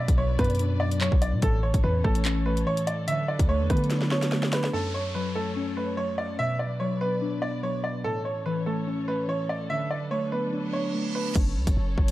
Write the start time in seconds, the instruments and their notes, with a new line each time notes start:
Already playing: synth keys B2, string section F#3 D4 B4 D5, upright piano D5
0.08 808-style bass B1, kick, closed hi-hat
0.18 synth keys F#3, upright piano C#5
0.39 808-style bass F#2, synth keys B3, upright piano B4, kick, cross-stick, closed hi-hat
0.44 closed hi-hat
0.50 closed hi-hat
0.55 closed hi-hat
0.59 synth keys D4, closed hi-hat
0.80 synth keys B3, upright piano D5
0.91 closed hi-hat
1.01 synth keys F#3, upright piano C#5, clap
1.12 808-style bass B1, kick
1.22 upright piano D5, closed hi-hat
1.33 808-style bass B2
1.42 808-style bass A1, synth keys A2, string section E3 C#4 A4 C#5, upright piano A4, kick, closed hi-hat
1.63 upright piano C#5
1.74 808-style bass A1, kick, closed hi-hat
1.83 808-style bass E2, synth keys E3, upright piano B4
2.04 808-style bass A1, synth keys A3, upright piano A4, kick, cross-stick
2.15 closed hi-hat
2.25 synth keys C#4, clap, closed hi-hat
2.46 synth keys A3, upright piano B4
2.57 closed hi-hat
2.66 synth keys E3, upright piano C#5
2.77 closed hi-hat
2.87 upright piano D5, closed hi-hat
3.08 synth keys D3, string section F#3 D4 B4, upright piano E5, closed hi-hat
3.28 upright piano D5
3.39 808-style bass D2, kick, closed hi-hat
3.49 synth keys A3, upright piano C#5
3.60 808-style bass E2
3.70 808-style bass D3, synth keys B3, upright piano B4, kick, cross-stick, closed hi-hat
3.77 closed hi-hat
3.84 closed hi-hat
3.90 synth keys D4, snare, closed hi-hat
4.02 snare
4.11 synth keys B3, upright piano C#5, snare
4.22 snare, closed hi-hat
4.32 synth keys A3, snare
4.43 snare
4.53 upright piano B4, snare, closed hi-hat
4.64 snare
4.73 synth keys F#2, string section F#3 C#4 A4 C#5, upright piano A4, downlifter
4.94 upright piano C#5
5.15 synth keys F#3, upright piano B4
5.35 synth keys A3, upright piano A4
5.56 synth keys C#4
5.77 synth keys A3, upright piano B4
5.97 synth keys F#3, upright piano C#5
6.18 upright piano D5
6.39 synth keys B2, string section D4 B4 D5, upright piano E5
6.59 upright piano D5
6.80 synth keys F#3, upright piano C#5
7.01 synth keys B3, upright piano B4
7.22 synth keys D4
7.42 synth keys B3, upright piano D5
7.63 synth keys F#3, upright piano C#5
7.84 upright piano D5
8.04 synth keys A2, string section E3 C#4 A4 C#5, upright piano A4
8.25 upright piano C#5
8.46 synth keys E3, upright piano B4
8.66 synth keys A3, upright piano A4
8.87 synth keys C#4
9.08 synth keys A3, upright piano B4
9.28 synth keys E3, upright piano C#5
9.49 upright piano D5
9.70 synth keys D3, string section F#3 D4 B4, upright piano E5
9.91 upright piano D5
10.11 synth keys A3, upright piano C#5
10.32 synth keys B3, upright piano B4
10.53 synth keys D4, reverse cymbal
10.73 synth keys B3, upright piano C#5
10.94 synth keys A3
11.15 upright piano B4
11.35 808-style bass F#1, string section F#3 C#4 A4 C#5, kick, closed hi-hat, crash
11.56 808-style bass C#2
11.67 808-style bass F#1, kick, closed hi-hat
11.77 808-style bass F#1
11.98 808-style bass F#1, kick
12.08 closed hi-hat